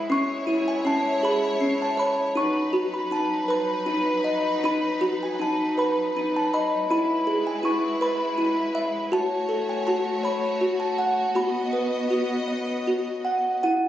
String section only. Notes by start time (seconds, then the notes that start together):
Already playing: G#3
0.10 E4 C#5
2.36 F#3 D#4 B4
6.88 G#3 E4 B4
9.11 A3 F#4 C#5
11.35 B3 D#5